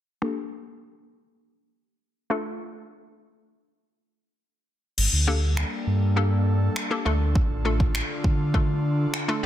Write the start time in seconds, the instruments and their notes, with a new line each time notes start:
0.22 synth pluck A#3 D4 G4 A4
2.30 synth pluck A3 D4 F4 A4
4.98 sub bass G1, analog synth pad G3 A#3 D4 A4, crash
5.13 sub bass D2
5.27 synth pluck A#3 D4 G4 A4
5.57 finger snap
5.87 sub bass G2
6.16 synth pluck A#3 D4 G4 A4
6.76 finger snap
6.91 synth pluck A#3 D4 G4 A4
7.05 sub bass D2, analog synth pad D3 F4, synth pluck A3 D4 F4 A4
7.35 kick
7.50 sub bass A1
7.65 synth pluck A3 D4 F4 A4
7.80 kick
7.95 finger snap
8.24 sub bass D3, kick
8.54 synth pluck A3 D4 F4 A4, kick
9.14 finger snap
9.28 synth pluck A3 D4 F4 A4